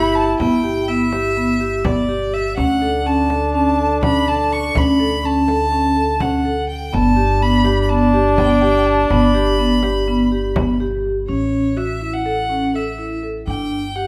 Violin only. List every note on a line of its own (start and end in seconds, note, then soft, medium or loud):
0.00 0.17 B5 loud
0.15 0.39 A5 medium
0.40 0.90 G5 loud
0.88 1.86 E5 medium
1.84 2.35 D5 medium
2.34 2.56 E5 medium
2.57 3.08 F#5 loud
3.06 3.54 A5 loud
3.55 4.00 A5 medium
4.04 4.30 B5 loud
4.28 4.54 A5 medium
4.53 4.79 C#6 medium
4.77 5.27 B5 loud
5.25 6.23 A5 loud
6.21 6.69 F#5 medium
6.69 6.95 G5 medium
6.94 7.44 A5 loud
7.42 7.81 B5 loud
7.82 7.91 B5 medium
7.89 8.41 A5 medium
8.39 8.63 G5 medium
8.63 8.88 G5 medium
8.86 9.12 A5 medium
9.11 10.80 B5 loud
11.28 11.79 C#5 medium
11.78 12.16 E5 medium
12.14 12.77 F#5 medium
12.75 13.24 E5 medium
13.47 13.97 G5 medium
13.96 14.07 F#5 medium